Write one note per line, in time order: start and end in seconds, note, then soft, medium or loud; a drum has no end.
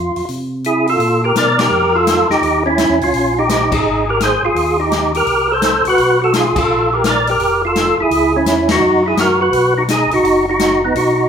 0.00 0.11 F2 medium
0.00 0.25 F4 medium
0.16 0.22 F2 soft
0.16 open hi-hat soft
0.28 0.96 C3 medium
0.28 open hi-hat soft
0.64 0.87 E4 medium
0.64 0.87 G#4 medium
0.64 closed hi-hat soft
0.87 1.22 F4 medium
0.87 1.22 A4 medium
0.87 open hi-hat soft
0.99 1.32 A#2 medium
0.99 open hi-hat soft
1.24 1.35 G4 medium
1.24 1.36 A#4 medium
1.35 1.68 B2 medium
1.35 1.58 A#4 medium
1.35 1.60 D5 loud
1.35 snare medium
1.35 closed hi-hat medium
1.59 1.93 G4 medium
1.59 1.97 A#4 loud
1.59 snare medium
1.59 ride medium
1.71 2.25 F2 medium
1.95 2.28 F4 medium
1.95 2.28 A4 loud
2.07 snare medium
2.07 closed hi-hat medium
2.29 2.36 F2 soft
2.29 2.63 D#4 medium
2.29 2.64 G4 loud
2.29 snare soft
2.42 2.86 D#2 medium
2.42 open hi-hat soft
2.66 2.99 C#4 medium
2.66 2.99 E4 loud
2.78 snare medium
2.78 closed hi-hat soft
2.90 3.01 E2 medium
3.01 3.12 C#2 medium
3.01 3.35 C#4 medium
3.01 3.39 F4 medium
3.01 open hi-hat soft
3.13 3.81 A#1 medium
3.13 open hi-hat soft
3.39 3.49 D#4 medium
3.39 3.50 G4 medium
3.49 3.71 D#4 medium
3.49 3.74 G4 medium
3.49 snare medium
3.49 closed hi-hat medium
3.72 4.05 D#4 medium
3.72 4.09 G#4 medium
3.72 kick medium
3.72 crash medium
3.84 4.39 G#1 medium
4.09 4.20 G4 medium
4.09 4.22 A#4 medium
4.20 4.43 G#4 medium
4.20 4.43 C5 loud
4.20 snare medium
4.20 closed hi-hat soft
4.43 4.49 G#1 soft
4.43 4.77 F4 medium
4.43 4.81 G#4 medium
4.55 5.23 D#2 medium
4.55 open hi-hat soft
4.80 5.12 D#4 medium
4.80 5.13 G4 medium
4.91 snare medium
4.91 closed hi-hat medium
5.14 5.48 G4 medium
5.14 5.52 A#4 medium
5.14 open hi-hat soft
5.27 5.81 C2 medium
5.27 open hi-hat soft
5.52 5.84 A4 medium
5.52 5.85 C5 medium
5.62 snare medium
5.62 closed hi-hat medium
5.85 5.91 C2 soft
5.85 6.20 F#4 medium
5.85 open hi-hat soft
5.89 6.21 B4 loud
5.98 6.52 B1 medium
5.98 open hi-hat soft
6.22 6.33 F#4 medium
6.22 6.35 A4 medium
6.33 6.56 F4 medium
6.33 6.59 G#4 medium
6.33 snare medium
6.33 closed hi-hat medium
6.56 6.62 B1 soft
6.56 6.90 F4 medium
6.56 6.94 A4 medium
6.56 kick medium
6.56 crash medium
6.69 7.36 A#1 medium
6.93 7.04 G4 medium
6.93 7.05 A#4 medium
7.04 7.27 A#4 medium
7.04 7.30 D5 medium
7.04 snare medium
7.04 closed hi-hat medium
7.27 7.62 G4 medium
7.27 7.62 A#4 medium
7.27 open hi-hat soft
7.39 7.94 F1 medium
7.39 open hi-hat soft
7.65 7.97 F4 medium
7.65 7.98 A4 medium
7.76 snare medium
7.76 closed hi-hat medium
7.98 8.05 F1 soft
7.98 8.33 E4 medium
7.98 8.37 G#4 medium
8.10 8.44 C#2 medium
8.10 open hi-hat soft
8.36 8.68 C#4 medium
8.36 8.69 E4 medium
8.45 8.79 E2 medium
8.45 snare medium
8.45 closed hi-hat medium
8.69 9.03 D#4 medium
8.69 9.04 F#4 loud
8.69 snare medium
8.69 ride medium
8.81 9.14 F#2 medium
9.06 9.17 E4 medium
9.06 9.19 G#4 medium
9.17 9.50 F#2 medium
9.17 9.40 F#4 medium
9.17 9.40 A#4 medium
9.17 snare medium
9.17 closed hi-hat medium
9.41 9.74 F#4 medium
9.41 9.74 B4 medium
9.52 10.07 B1 medium
9.52 open hi-hat soft
9.78 9.83 D#4 medium
9.78 9.84 F#4 medium
9.88 10.11 D#4 medium
9.88 10.13 G#4 medium
9.88 snare medium
9.88 closed hi-hat medium
10.10 10.17 B1 soft
10.10 10.45 D#4 medium
10.10 10.46 F#4 loud
10.10 open hi-hat soft
10.23 10.91 F#1 medium
10.23 open hi-hat medium
10.49 10.81 D#4 medium
10.49 10.82 F#4 medium
10.59 snare medium
10.59 closed hi-hat medium
10.85 10.95 B3 medium
10.85 10.95 D#4 medium
10.95 11.29 B1 medium
10.95 11.29 D#4 medium
10.95 11.29 F#4 medium
10.95 open hi-hat soft